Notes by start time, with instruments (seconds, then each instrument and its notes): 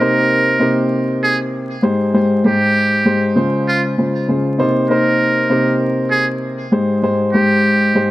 0.00 upright piano C3 A#3 D#4 C5, muted trumpet A#4
0.59 upright piano C3 A#3 D#4 C5
1.24 muted trumpet G#4
1.82 upright piano G#2 G#3 G4 C5
2.14 upright piano G#2 G#3 G4 C5
2.44 upright piano G#2 G#3 G4 C5, muted trumpet G4
3.05 upright piano G#2 G#3 G4 C5
3.35 upright piano C#3 G#3 F4 C5
3.68 muted trumpet F4
3.98 upright piano C#3 G#3 F4 C5
4.28 upright piano C#3 G#3 F4 C5
4.58 upright piano C3 A#3 D#4 C5
4.90 upright piano C3 A#3 D#4 C5, muted trumpet A#4
5.49 upright piano C3 A#3 D#4 C5
6.11 muted trumpet G#4
6.71 upright piano G#2 G#3 G4 C5
7.02 upright piano G#2 G#3 G4 C5
7.33 upright piano G#2 G#3 G4 C5, muted trumpet G4
7.95 upright piano G#2 G#3 G4 C5